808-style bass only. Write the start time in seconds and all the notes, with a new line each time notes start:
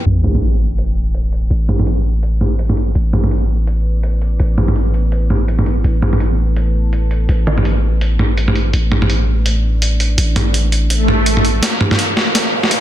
0.06 A1
1.50 A1
2.95 A1
4.40 A1
5.84 A1
7.29 A1
8.73 A1
10.18 A1
11.62 A1
12.71 C2